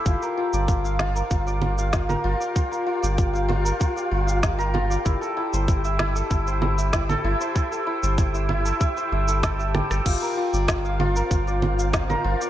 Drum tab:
CC |----------------|----------------|----------------|----------------|
SH |xx-xxx-xxx-xxx-x|xx-xxx-xxx-xxx-x|xx-xxx-xxx-xxx-x|xx-xxx-xxx-xxx-x|
SD |------o-----o---|------------o---|------o-----o---|------------o-rr|
CG |------O---O--O--|------O-------O-|------O---O--O--|------O-------O-|
BD |o---o---o---o---|o---o---o---o---|o---o---o---o---|o---o---o---o---|

CC |x---------------|
SH |xx-xxx-xxx-xxx-x|
SD |----o-------o---|
CG |------O---O--O--|
BD |o---o---o---o---|